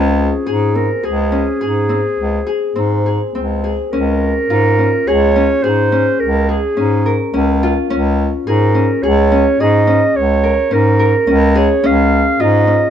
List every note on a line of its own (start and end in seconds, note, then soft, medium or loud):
0.00 0.33 C#2 medium
0.00 0.81 C#4 medium
0.00 2.13 F4 medium
0.00 0.46 G#4 medium
0.19 0.77 G#4 medium
0.46 0.90 G#2 medium
0.46 1.03 G#4 medium
0.75 1.38 C4 medium
0.75 1.07 A#4 medium
1.03 1.47 C#2 medium
1.03 1.60 G#4 medium
1.03 3.35 G#4 medium
1.32 1.95 C#4 medium
1.61 2.04 G#2 medium
1.61 2.46 G#4 medium
1.89 2.75 C4 medium
2.18 2.40 C#2 medium
2.46 3.06 G#4 medium
2.76 3.20 G#2 medium
2.76 3.35 C4 medium
3.06 3.63 G#4 medium
3.35 3.78 C#2 medium
3.35 3.99 C4 medium
3.64 5.07 G#4 medium
3.91 4.36 C#2 medium
3.91 4.78 C#4 medium
3.91 5.09 A#4 medium
4.49 4.92 G#2 medium
4.49 7.02 F4 medium
4.78 5.35 C#4 medium
5.07 5.50 C#2 medium
5.07 5.63 G#4 medium
5.07 5.65 C#5 loud
5.36 5.92 C#4 medium
5.64 6.07 G#2 medium
5.64 6.48 G#4 medium
5.64 6.22 C5 loud
5.92 6.76 C#4 medium
6.20 6.63 C#2 medium
6.20 6.51 A#4 medium
6.49 8.46 G#4 medium
6.49 7.34 G#4 medium
6.77 7.21 G#2 medium
6.77 7.33 C#4 medium
7.06 9.18 A#4 medium
7.34 7.76 C#2 medium
7.34 7.90 C#4 medium
7.63 10.15 F4 medium
7.90 8.33 C#2 medium
7.90 8.74 C#4 medium
8.46 8.90 G#2 medium
8.46 9.03 G#4 medium
8.46 9.04 A#4 medium
8.75 9.31 C#4 medium
9.03 9.46 C#2 medium
9.03 9.60 G#4 medium
9.03 9.62 C#5 medium
9.32 9.87 C#4 medium
9.60 10.02 G#2 medium
9.60 11.55 G#4 medium
9.60 10.18 D#5 loud
9.87 10.70 C#4 medium
10.16 10.58 C#2 medium
10.16 10.75 C#5 medium
10.43 10.99 A#4 medium
10.71 11.15 G#2 medium
10.71 11.27 C#4 medium
10.71 11.59 A#4 medium
10.99 12.90 A#4 medium
11.27 11.70 C#2 medium
11.27 11.83 C#4 medium
11.55 12.90 G#4 medium
11.55 11.88 C#5 medium
11.83 12.26 C#2 medium
11.83 12.67 C#4 medium
11.83 12.43 F5 loud
12.40 12.82 G#2 medium
12.40 12.90 F4 medium
12.40 12.90 D#5 medium
12.67 12.90 C#4 medium